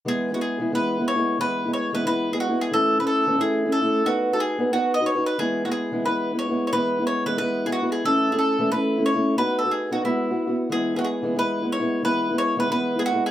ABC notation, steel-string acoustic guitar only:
X:1
M:4/4
L:1/16
Q:"Swing" 1/4=180
K:E
V:1 name="Steel-string acoustic guitar"
[E,G,B,E]3 [G,B,E]3 [E,G,B,E]2 [E,G,B,E]3 [G,B,E]2 [G,B,E]3 | [E,G,B,E]3 [G,B,E]3 [E,G,B,E]2 [E,G,B,E]3 [G,B,E]2 [G,B,E]3 | [E,A,CE]3 [A,CE]3 [E,A,CE]2 [E,A,CE]3 [A,CE]2 [A,CE]3 | [B,DFB]3 [DFB]3 [B,DFB]2 [B,DFB]3 [DFB]2 [DFB]3 |
[E,G,B,E]3 [G,B,E]3 [E,G,B,E]2 [E,G,B,E]3 [G,B,E]2 [G,B,E]3 | [E,G,B,E]3 [G,B,E]3 [E,G,B,E]2 [E,G,B,E]3 [G,B,E]2 [G,B,E]3 | [E,A,CE]3 [A,CE]3 [E,A,CE]2 [E,A,CE]3 [A,CE]2 [A,CE]3 | [B,DFB]3 [DFB]3 [B,DFB]2 [G,B,EF]3 [B,EF]2 [B,EF]3 |
[E,G,B,E]3 [G,B,E]3 [E,G,B,E]2 [E,G,B,E]3 [G,B,E]2 [G,B,E]3 | [E,G,B,E]3 [G,B,E]3 [E,G,B,E]2 [E,G,B,E]3 [G,B,E]2 [G,B,E]3 |]